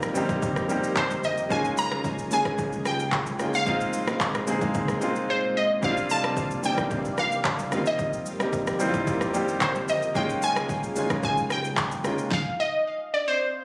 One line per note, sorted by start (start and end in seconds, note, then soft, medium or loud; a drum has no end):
0.00 1.48 F2 medium
0.00 1.48 D#3 medium
0.00 0.14 G3 medium
0.00 0.15 A#3 medium
0.00 0.16 C4 medium
0.00 0.16 D#4 medium
0.00 1.52 F4 medium
0.00 1.48 G4 medium
0.00 1.48 A#4 medium
0.00 0.80 D#5 loud
0.00 cross-stick medium
0.00 high conga soft
0.00 shaker medium
0.14 0.58 G3 medium
0.14 0.59 A#3 medium
0.14 0.59 C4 medium
0.14 0.59 D#4 medium
0.14 0.60 G4 loud
0.14 low conga medium
0.14 shaker loud
0.29 kick medium
0.29 high conga medium
0.29 shaker medium
0.42 kick loud
0.42 low conga medium
0.42 shaker medium
0.56 cross-stick medium
0.56 high conga medium
0.56 shaker medium
0.68 1.34 G3 medium
0.68 1.34 A#3 medium
0.68 1.35 C4 medium
0.68 1.35 D#4 medium
0.68 1.36 G4 medium
0.68 high conga medium
0.68 shaker medium
0.84 shaker medium
0.96 1.25 C5 medium
0.96 kick medium
0.96 clap medium
0.96 low conga medium
0.96 shaker medium
1.10 high conga medium
1.10 shaker medium
1.23 1.52 D#5 loud
1.23 low conga medium
1.23 shaker medium
1.38 shaker medium
1.49 3.65 D#2 medium
1.49 3.64 C#3 medium
1.49 2.15 G#3 loud
1.49 2.15 A#3 medium
1.49 2.16 C#4 medium
1.49 2.16 D#4 medium
1.49 3.65 F4 medium
1.49 2.17 F4 loud
1.49 3.64 G#4 medium
1.49 1.76 G#5 loud
1.49 kick loud
1.49 shaker medium
1.65 shaker medium
1.77 2.34 A#5 loud
1.77 high conga medium
1.77 shaker loud
1.91 cross-stick loud
1.91 high conga medium
1.91 shaker soft
2.04 kick medium
2.04 shaker medium
2.18 high conga soft
2.18 shaker medium
2.31 3.18 G#3 medium
2.31 3.18 A#3 medium
2.31 3.18 C#4 medium
2.31 3.19 D#4 medium
2.31 3.19 G#4 medium
2.31 2.88 G#5 loud
2.31 low conga medium
2.31 shaker loud
2.45 kick medium
2.45 cross-stick loud
2.45 high conga medium
2.45 shaker medium
2.58 kick loud
2.58 low conga medium
2.58 shaker medium
2.73 high conga medium
2.73 shaker medium
2.85 3.56 G5 loud
2.85 cross-stick loud
2.85 high conga medium
2.85 shaker medium
2.99 shaker medium
3.12 kick medium
3.12 clap medium
3.12 low conga medium
3.12 shaker medium
3.26 high conga medium
3.26 shaker medium
3.39 3.61 G#3 medium
3.39 3.61 A#3 medium
3.39 3.62 C#4 medium
3.39 3.62 D#4 medium
3.39 3.62 F4 medium
3.39 cross-stick medium
3.39 low conga medium
3.39 shaker medium
3.53 5.12 F5 loud
3.53 shaker medium
3.66 5.81 A#2 medium
3.66 3.99 G#3 loud
3.66 5.81 G#3 medium
3.66 3.99 A#3 medium
3.66 4.00 C4 medium
3.66 5.81 D#4 medium
3.66 4.00 D#4 medium
3.66 4.00 F4 loud
3.66 5.81 C5 medium
3.66 kick loud
3.66 shaker medium
3.81 shaker medium
3.93 high conga medium
3.93 shaker loud
4.07 4.39 G#3 medium
4.07 4.40 A#3 medium
4.07 4.40 C4 medium
4.07 4.41 D#4 medium
4.07 4.41 F4 medium
4.07 cross-stick loud
4.07 high conga medium
4.07 shaker soft
4.21 kick medium
4.21 clap medium
4.21 shaker medium
4.35 cross-stick loud
4.35 high conga soft
4.35 shaker medium
4.47 4.91 G#3 medium
4.47 4.91 A#3 medium
4.47 4.92 C4 medium
4.47 4.92 D#4 medium
4.47 4.92 G#4 loud
4.47 low conga medium
4.47 shaker loud
4.61 kick medium
4.61 high conga medium
4.61 shaker medium
4.74 kick loud
4.74 low conga medium
4.74 shaker medium
4.88 cross-stick medium
4.88 high conga medium
4.88 shaker medium
5.01 5.66 G#3 medium
5.01 5.67 A#3 medium
5.01 5.67 C4 medium
5.01 5.68 D#4 medium
5.01 5.68 F4 loud
5.01 high conga medium
5.01 shaker medium
5.16 shaker medium
5.30 5.57 C5 medium
5.57 5.82 D#5 medium
5.82 7.70 C3 medium
5.82 6.47 G3 medium
5.82 6.48 A#3 medium
5.82 7.70 A#3 medium
5.82 6.48 C4 medium
5.82 6.49 D4 medium
5.82 5.91 E4 medium
5.82 7.70 D5 medium
5.82 7.70 F5 medium
5.82 6.09 F5 medium
5.82 kick loud
5.82 shaker medium
5.91 6.52 F4 loud
5.97 shaker medium
6.10 6.61 A5 loud
6.10 high conga medium
6.10 shaker loud
6.24 cross-stick loud
6.24 high conga medium
6.24 shaker soft
6.37 kick medium
6.37 shaker medium
6.51 high conga soft
6.51 shaker medium
6.63 7.50 G3 medium
6.63 7.50 A#3 medium
6.63 7.51 C4 medium
6.63 7.51 D4 medium
6.63 6.72 D#4 medium
6.63 7.20 G5 loud
6.63 low conga medium
6.63 shaker loud
6.73 7.55 E3 medium
6.77 kick medium
6.77 cross-stick loud
6.77 high conga medium
6.77 shaker medium
6.91 kick loud
6.91 low conga medium
6.91 shaker medium
7.05 high conga medium
7.05 shaker medium
7.18 7.83 F5 loud
7.18 cross-stick medium
7.18 high conga medium
7.18 shaker medium
7.32 shaker medium
7.45 kick medium
7.45 clap medium
7.45 low conga medium
7.45 shaker medium
7.59 high conga medium
7.59 shaker medium
7.71 10.13 F2 medium
7.71 10.13 D#3 medium
7.71 8.25 G3 medium
7.71 7.78 A3 medium
7.71 8.26 C4 medium
7.71 8.27 D#4 medium
7.71 8.27 F4 medium
7.71 10.13 G4 medium
7.71 10.13 A#4 medium
7.71 cross-stick medium
7.71 low conga medium
7.71 shaker medium
7.78 8.29 A#3 medium
7.86 9.45 D#5 medium
7.86 shaker medium
7.99 kick loud
7.99 shaker medium
8.13 shaker medium
8.26 high conga medium
8.26 shaker loud
8.39 8.72 G3 medium
8.39 8.72 A#3 medium
8.39 8.73 C4 medium
8.39 8.73 D#4 medium
8.39 8.73 G4 medium
8.39 cross-stick loud
8.39 high conga medium
8.39 shaker soft
8.53 kick medium
8.53 shaker medium
8.67 cross-stick medium
8.67 high conga soft
8.67 shaker medium
8.79 9.23 G3 medium
8.79 9.24 A#3 medium
8.79 9.24 C4 medium
8.79 9.24 D#4 medium
8.79 8.88 E4 medium
8.79 low conga medium
8.79 shaker loud
8.89 9.28 F4 loud
8.94 kick medium
8.94 high conga medium
8.94 shaker medium
9.07 kick loud
9.07 low conga medium
9.07 shaker medium
9.21 cross-stick medium
9.21 high conga medium
9.21 shaker medium
9.33 9.99 G3 medium
9.33 9.99 A#3 medium
9.33 10.00 C4 medium
9.33 10.00 D#4 medium
9.33 10.00 G4 loud
9.33 high conga medium
9.33 shaker medium
9.48 shaker medium
9.61 9.90 C5 medium
9.61 kick medium
9.61 clap medium
9.61 low conga medium
9.61 shaker medium
9.75 high conga medium
9.75 shaker medium
9.88 10.17 D#5 medium
9.88 low conga medium
9.88 shaker medium
10.02 shaker medium
10.15 12.29 D#2 medium
10.15 12.29 C#3 medium
10.15 10.80 G#3 medium
10.15 10.80 A#3 medium
10.15 10.81 C#4 medium
10.15 10.81 D#4 medium
10.15 12.29 F4 medium
10.15 10.82 F4 loud
10.15 12.29 G#4 medium
10.15 10.44 G5 loud
10.15 kick loud
10.15 shaker medium
10.30 shaker medium
10.42 11.20 G#5 loud
10.42 high conga medium
10.42 shaker loud
10.56 cross-stick loud
10.56 high conga medium
10.56 shaker soft
10.69 kick medium
10.69 shaker medium
10.83 high conga soft
10.83 shaker medium
10.95 11.83 G#3 medium
10.95 11.83 A#3 medium
10.95 11.83 C#4 medium
10.95 11.84 D#4 medium
10.95 11.84 F4 medium
10.95 low conga medium
10.95 shaker loud
11.10 kick medium
11.10 cross-stick loud
11.10 high conga medium
11.10 shaker medium
11.23 11.37 G#5 loud
11.23 kick loud
11.23 low conga medium
11.23 shaker medium
11.38 high conga medium
11.38 shaker medium
11.50 12.35 G5 loud
11.50 cross-stick medium
11.50 high conga medium
11.50 shaker medium
11.64 shaker medium
11.77 kick medium
11.77 clap medium
11.77 low conga medium
11.77 shaker medium
11.91 high conga medium
11.91 shaker medium
12.03 12.26 G#3 medium
12.03 12.26 A#3 medium
12.03 12.27 C#4 medium
12.03 12.27 D#4 medium
12.03 12.27 F4 medium
12.03 cross-stick medium
12.03 low conga medium
12.03 shaker medium
12.18 shaker medium
12.31 12.57 F5 medium
12.31 kick loud
12.31 snare medium
12.60 13.15 D#5 loud
13.14 13.28 D5 medium
13.28 13.64 C5 medium